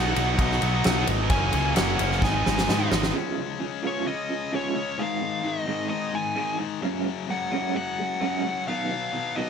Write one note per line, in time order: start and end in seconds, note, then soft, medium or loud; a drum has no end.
0.00 0.13 B1 medium
0.00 0.36 B2 loud
0.00 0.16 F#3 loud
0.00 0.14 B3 loud
0.00 0.13 D#4 loud
0.00 0.41 F#5 medium
0.14 0.36 B1 medium
0.14 0.37 F#3 medium
0.14 0.38 B3 medium
0.14 0.38 D#4 medium
0.14 ride medium
0.37 0.58 B1 medium
0.37 0.61 B2 medium
0.37 0.61 F#3 medium
0.37 0.60 B3 medium
0.37 0.59 D#4 medium
0.37 kick loud
0.37 ride loud
0.42 1.05 F#5 medium
0.51 snare soft
0.60 0.81 B1 medium
0.60 0.82 B2 medium
0.60 0.83 F#3 medium
0.60 0.84 B3 medium
0.60 0.85 D#4 medium
0.60 ride medium
0.84 1.04 B1 medium
0.84 1.29 B2 medium
0.84 1.07 F#3 medium
0.84 1.06 B3 medium
0.84 1.05 D#4 loud
0.84 snare loud
0.84 ride loud
1.06 1.27 G#1 medium
1.06 1.29 F#3 medium
1.06 1.29 B3 medium
1.06 1.29 D#4 medium
1.06 ride medium
1.29 1.50 F#1 medium
1.29 1.73 F#2 medium
1.29 1.74 C#3 loud
1.29 1.53 F#3 loud
1.29 1.52 A#3 loud
1.29 1.51 C#4 loud
1.29 1.73 G#5 loud
1.29 kick loud
1.29 ride loud
1.52 1.73 C#2 medium
1.52 1.74 F#3 medium
1.52 1.75 A#3 medium
1.52 1.75 C#4 medium
1.52 ride medium
1.74 1.96 F#1 medium
1.74 2.20 F#2 medium
1.74 2.20 C#3 loud
1.74 1.99 F#3 loud
1.74 1.97 A#3 loud
1.74 1.96 C#4 loud
1.74 2.23 F#5 medium
1.74 snare loud
1.74 ride loud
1.97 2.22 F#1 medium
1.97 2.22 C#3 medium
1.97 2.21 F#3 medium
1.97 2.21 A#3 medium
1.97 2.20 C#4 medium
1.97 ride medium
2.02 2.21 F#2 medium
2.12 snare soft
2.20 2.41 G#1 loud
2.20 2.45 G#2 loud
2.20 2.45 D#3 medium
2.20 2.44 G#3 medium
2.20 2.44 B3 medium
2.20 2.43 D#4 medium
2.20 2.88 G#5 medium
2.20 kick loud
2.20 snare medium
2.44 2.66 G#1 medium
2.44 2.92 G#2 medium
2.44 2.66 D#3 medium
2.44 2.67 G#3 medium
2.44 2.68 B3 medium
2.44 2.69 D#4 medium
2.44 snare medium
2.58 snare medium
2.67 2.88 G#2 medium
2.67 3.12 D#3 medium
2.67 2.91 G#3 medium
2.67 2.90 B3 medium
2.67 2.89 D#4 medium
2.67 snare medium
2.91 3.11 G#1 medium
2.91 3.14 G#2 medium
2.91 3.14 D#3 medium
2.91 3.13 G#3 medium
2.91 3.13 B3 medium
2.91 3.13 D#4 medium
2.91 snare loud
3.03 snare medium
3.14 3.59 C#3 medium
3.14 3.36 F3 medium
3.14 3.60 G#3 medium
3.14 3.60 C#4 medium
3.36 3.57 C#3 medium
3.36 3.58 F3 medium
3.60 3.82 C#3 medium
3.60 3.81 F3 medium
3.60 3.83 G#3 medium
3.60 3.83 C#4 medium
3.83 4.05 C#3 medium
3.83 4.05 F3 medium
3.83 4.06 G#3 medium
3.83 4.06 C#4 medium
3.87 4.07 C#5 medium
4.06 4.50 C#3 medium
4.06 4.27 F3 medium
4.06 4.52 G#3 medium
4.06 4.51 C#4 medium
4.06 4.54 D#5 medium
4.29 4.50 C#3 medium
4.29 4.50 F3 medium
4.52 4.74 C#3 medium
4.52 4.74 F3 medium
4.52 4.75 G#3 medium
4.52 4.74 C#4 medium
4.52 5.01 C#5 medium
4.75 4.97 C#3 medium
4.75 4.96 F3 medium
4.75 4.98 G#3 medium
4.75 4.97 C#4 medium
4.98 5.42 G#2 medium
4.98 5.42 D#3 medium
4.98 5.44 G#3 medium
4.98 5.46 F5 medium
5.21 5.42 G#2 medium
5.21 5.42 D#3 medium
5.43 5.65 G#2 medium
5.43 5.66 D#3 medium
5.43 5.67 G#3 medium
5.43 5.88 D#5 medium
5.66 5.88 G#2 medium
5.66 5.89 D#3 medium
5.66 5.89 G#3 medium
5.89 6.35 G#2 medium
5.89 6.35 D#3 medium
5.89 6.35 G#3 medium
5.89 6.14 D#5 medium
6.13 6.34 G#2 medium
6.13 6.34 D#3 medium
6.13 6.57 G#5 medium
6.36 6.57 G#2 medium
6.36 6.58 D#3 medium
6.36 6.58 G#3 medium
6.58 6.81 G#2 medium
6.58 6.81 D#3 medium
6.58 6.81 G#3 medium
6.81 7.27 F#2 medium
6.81 7.28 C#3 medium
6.81 7.29 F#3 medium
6.81 7.04 G#3 medium
6.81 7.05 C#4 medium
7.05 7.26 F#3 medium
7.05 7.26 G#3 medium
7.28 7.49 F#2 medium
7.28 7.50 C#3 medium
7.28 7.51 F#3 medium
7.28 7.50 G#3 medium
7.28 7.76 F#5 medium
7.51 7.73 F#2 medium
7.51 7.74 C#3 medium
7.51 7.74 F#3 medium
7.51 7.74 G#3 medium
7.51 7.74 C#4 medium
7.74 8.19 F#2 medium
7.74 8.20 C#3 medium
7.74 8.20 F#3 medium
7.74 7.96 G#3 medium
7.74 8.67 F#5 medium
7.99 8.19 F#3 medium
7.99 8.19 G#3 medium
8.20 8.42 F#2 medium
8.20 8.42 C#3 medium
8.20 8.43 F#3 medium
8.20 8.43 G#3 medium
8.20 8.43 C#4 medium
8.43 8.65 F#2 medium
8.43 8.65 C#3 medium
8.43 8.66 F#3 medium
8.43 8.65 G#3 medium
8.67 9.11 B2 medium
8.67 8.89 D#3 medium
8.67 9.12 F#3 medium
8.67 9.12 B3 medium
8.67 9.39 F5 medium
8.91 9.12 B2 medium
8.91 9.12 D#3 medium
9.12 9.34 B2 medium
9.12 9.34 D#3 medium
9.12 9.35 F#3 medium
9.12 9.35 B3 medium
9.36 9.50 B2 medium
9.36 9.50 D#3 medium
9.36 9.50 F#3 medium
9.36 9.50 B3 medium
9.36 9.50 D#5 medium